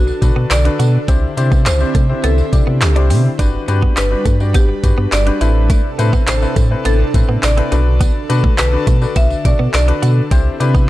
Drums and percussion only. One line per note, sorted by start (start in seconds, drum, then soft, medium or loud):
0.08 tambourine soft
0.22 kick medium
0.22 closed hi-hat medium
0.22 tambourine soft
0.51 snare medium
0.51 clap loud
0.51 closed hi-hat medium
0.51 tambourine medium
0.65 closed hi-hat medium
0.80 closed hi-hat medium
0.80 tambourine soft
1.08 kick loud
1.08 closed hi-hat loud
1.08 tambourine medium
1.37 closed hi-hat medium
1.37 tambourine medium
1.52 kick loud
1.52 tambourine soft
1.66 snare medium
1.66 clap loud
1.66 closed hi-hat loud
1.66 tambourine loud
1.80 tambourine soft
1.95 kick medium
1.95 closed hi-hat medium
1.95 tambourine soft
2.24 closed hi-hat medium
2.24 tambourine soft
2.38 tambourine soft
2.53 kick medium
2.53 closed hi-hat medium
2.53 tambourine soft
2.81 snare medium
2.81 clap loud
2.81 closed hi-hat medium
2.81 tambourine medium
2.96 closed hi-hat medium
3.10 open hi-hat medium
3.10 tambourine medium
3.39 kick loud
3.39 closed hi-hat loud
3.39 tambourine medium
3.68 closed hi-hat medium
3.68 tambourine soft
3.82 kick medium
3.97 snare loud
3.97 clap loud
3.97 closed hi-hat medium
3.97 tambourine loud
4.26 kick medium
4.26 closed hi-hat medium
4.26 tambourine soft
4.40 tambourine soft
4.54 kick medium
4.54 closed hi-hat medium
4.54 tambourine soft
4.83 kick medium
4.83 closed hi-hat medium
4.83 tambourine soft
5.12 snare medium
5.12 clap loud
5.12 closed hi-hat medium
5.12 tambourine medium
5.27 closed hi-hat medium
5.41 closed hi-hat medium
5.41 tambourine medium
5.70 kick loud
5.70 closed hi-hat loud
5.70 tambourine medium
5.99 closed hi-hat medium
5.99 tambourine medium
6.13 kick medium
6.13 tambourine soft
6.27 snare loud
6.27 clap loud
6.27 closed hi-hat loud
6.27 tambourine loud
6.42 tambourine soft
6.56 kick medium
6.56 closed hi-hat medium
6.56 tambourine soft
6.85 closed hi-hat medium
6.85 tambourine soft
7.14 kick loud
7.14 closed hi-hat medium
7.14 tambourine soft
7.43 snare medium
7.43 clap loud
7.43 closed hi-hat medium
7.43 tambourine medium
7.58 closed hi-hat medium
7.72 closed hi-hat medium
7.72 tambourine soft
8.01 kick loud
8.01 closed hi-hat loud
8.01 tambourine medium
8.30 closed hi-hat medium
8.30 tambourine medium
8.44 kick loud
8.58 snare loud
8.58 clap loud
8.58 closed hi-hat medium
8.58 tambourine medium
8.87 kick medium
8.87 closed hi-hat medium
8.87 tambourine medium
9.02 tambourine soft
9.16 kick medium
9.16 closed hi-hat medium
9.16 tambourine soft
9.30 tambourine soft
9.45 kick loud
9.45 closed hi-hat medium
9.45 tambourine soft
9.74 snare medium
9.74 clap loud
9.74 closed hi-hat medium
9.74 tambourine medium
9.88 closed hi-hat medium
10.03 closed hi-hat medium
10.03 tambourine medium
10.31 kick loud
10.31 closed hi-hat loud
10.31 tambourine medium
10.60 closed hi-hat medium
10.60 tambourine medium
10.75 kick loud
10.75 tambourine soft